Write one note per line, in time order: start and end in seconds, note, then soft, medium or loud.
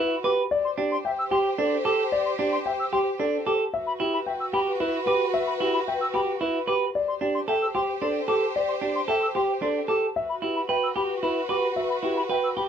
0.00 0.15 E4 medium
0.00 0.34 F#4 medium
0.00 0.15 B4 medium
0.00 0.34 B4 medium
0.24 0.42 G4 medium
0.24 0.42 B4 medium
0.24 0.30 D6 medium
0.51 3.56 G4 medium
0.51 3.55 C5 medium
0.51 0.69 D5 medium
0.64 0.70 C6 medium
0.78 0.95 D4 medium
0.78 0.95 G4 medium
0.92 0.98 C6 medium
1.05 1.11 E5 medium
1.05 1.22 G5 medium
1.18 1.24 E6 medium
1.31 1.49 G4 medium
1.31 1.38 C6 medium
1.58 1.76 D4 medium
1.58 1.76 A4 medium
1.85 2.03 G4 medium
1.85 2.03 A4 medium
1.85 1.91 D6 medium
2.12 2.30 D5 medium
2.25 2.31 C6 medium
2.39 2.56 D4 medium
2.39 2.56 G4 medium
2.52 2.58 C6 medium
2.66 2.72 E5 medium
2.66 2.83 G5 medium
2.79 2.85 E6 medium
2.92 3.10 G4 medium
2.92 2.98 C6 medium
3.20 3.37 D4 medium
3.20 3.37 A4 medium
3.46 3.64 G4 medium
3.46 3.64 A4 medium
3.46 3.52 D6 medium
3.73 6.77 F#4 medium
3.73 6.77 B4 medium
3.73 3.90 E5 medium
3.87 3.93 B5 medium
4.00 4.17 E4 medium
4.00 4.17 G4 medium
4.13 4.19 B5 medium
4.26 4.33 E5 medium
4.26 4.44 G5 medium
4.40 4.46 E6 medium
4.53 4.71 G4 medium
4.53 4.59 B5 medium
4.80 4.97 E4 medium
4.80 4.97 B4 medium
5.07 5.24 G4 medium
5.07 5.24 B4 medium
5.07 5.13 D6 medium
5.34 5.51 E5 medium
5.47 5.53 B5 medium
5.60 5.78 E4 medium
5.60 5.78 G4 medium
5.74 5.80 B5 medium
5.87 5.93 E5 medium
5.87 6.05 G5 medium
6.01 6.07 E6 medium
6.14 6.31 G4 medium
6.14 6.32 G4 medium
6.14 6.20 B5 medium
6.41 6.58 E4 medium
6.41 6.58 B4 medium
6.67 6.85 G4 medium
6.67 6.85 B4 medium
6.67 6.74 D6 medium
6.94 9.98 G4 medium
6.94 9.98 C5 medium
6.94 7.12 D5 medium
7.08 7.14 C6 medium
7.21 7.38 D4 medium
7.21 7.39 G4 medium
7.35 7.41 C6 medium
7.48 7.65 A4 medium
7.48 7.54 E5 medium
7.48 7.66 G5 medium
7.61 7.67 E6 medium
7.75 7.92 G4 medium
7.75 7.81 C6 medium
8.01 8.19 D4 medium
8.01 8.19 A4 medium
8.01 8.07 C6 medium
8.28 8.46 G4 medium
8.28 8.46 A4 medium
8.28 8.34 D6 medium
8.56 8.73 D5 medium
8.68 8.74 C6 medium
8.81 8.99 D4 medium
8.81 8.99 G4 medium
8.95 9.01 C6 medium
9.08 9.26 A4 medium
9.08 9.15 E5 medium
9.08 9.26 G5 medium
9.22 9.28 E6 medium
9.35 9.53 G4 medium
9.35 9.41 C6 medium
9.62 9.79 D4 medium
9.62 9.80 A4 medium
9.62 9.68 C6 medium
9.88 10.06 G4 medium
9.88 10.06 A4 medium
9.88 9.95 D6 medium
10.15 12.69 F#4 medium
10.15 12.69 B4 medium
10.15 10.33 E5 medium
10.29 10.35 B5 medium
10.42 10.60 E4 medium
10.42 10.60 G4 medium
10.56 10.62 B5 medium
10.69 10.87 B4 medium
10.69 10.75 E5 medium
10.69 10.87 G5 medium
10.83 10.89 E6 medium
10.96 11.13 G4 medium
10.96 11.02 B5 medium
11.23 11.40 E4 medium
11.23 11.40 B4 medium
11.23 11.29 B5 medium
11.49 11.67 G4 medium
11.49 11.67 B4 medium
11.49 11.56 D6 medium
11.76 11.94 E5 medium
11.90 11.96 B5 medium
12.03 12.20 E4 medium
12.03 12.21 G4 medium
12.16 12.22 B5 medium
12.29 12.47 B4 medium
12.29 12.36 E5 medium
12.29 12.47 G5 medium
12.43 12.49 E6 medium
12.57 12.69 G4 medium
12.57 12.63 B5 medium